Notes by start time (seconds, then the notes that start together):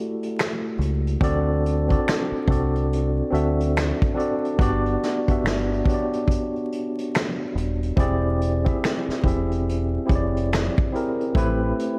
Already playing: A3 E4 F#4 G4 A4 D5
0.23 closed hi-hat
0.39 finger snap, snare, closed hi-hat
0.79 C#2, closed hi-hat
1.07 closed hi-hat
1.21 D2 C4 D4 F#4 A4 D5, kick, closed hi-hat
1.66 closed hi-hat
1.88 C4 D4 F#4 A4 D5, kick, closed hi-hat
2.08 finger snap, snare, closed hi-hat
2.32 muted fingered electric bass stroke, closed hi-hat
2.48 C2 C4 D4 F#4 A4 D5, kick, closed hi-hat
2.75 closed hi-hat
2.93 closed hi-hat
3.31 D2 C4 D4 F#4 A4 E5, closed hi-hat
3.60 closed hi-hat
3.76 finger snap, snare, closed hi-hat
4.02 kick, closed hi-hat
4.14 C4 D4 F#4 A4 D5
4.19 closed hi-hat
4.45 closed hi-hat
4.59 G1 B3 D4 F#4 G4 D5, kick, closed hi-hat
4.86 closed hi-hat
5.03 snare, closed hi-hat
5.28 B3 D4 F#4 G4 E5, kick, closed hi-hat
5.44 G1, finger snap, snare, closed hi-hat
5.73 closed hi-hat
5.84 B3 D4 F#4 G4 C#5, kick
5.89 closed hi-hat
5.94 D5
6.13 closed hi-hat
6.28 kick, closed hi-hat
6.56 closed hi-hat
6.72 closed hi-hat
6.98 closed hi-hat
7.14 finger snap, snare, closed hi-hat
7.55 D#1, closed hi-hat
7.83 closed hi-hat
7.96 E1 C4 E4 G4 G#4 D5, kick, closed hi-hat
8.41 closed hi-hat
8.64 C4 E4 G4 G#4 E5, kick, closed hi-hat
8.84 finger snap, snare, closed hi-hat
9.08 muted fingered electric bass stroke, snare, closed hi-hat
9.24 E1 C4 E4 G4 G#4 E5, kick, closed hi-hat
9.51 closed hi-hat
9.69 closed hi-hat
10.06 F1 C4 E4 G4 G#4 C#5, kick
10.11 closed hi-hat
10.16 D5
10.37 closed hi-hat
10.52 finger snap, snare, closed hi-hat
10.78 kick
10.92 C4 E4 G4 G#4 A#4, closed hi-hat
11.21 closed hi-hat
11.34 A1 A3 C4 E4 G4 B4, kick, closed hi-hat
11.79 closed hi-hat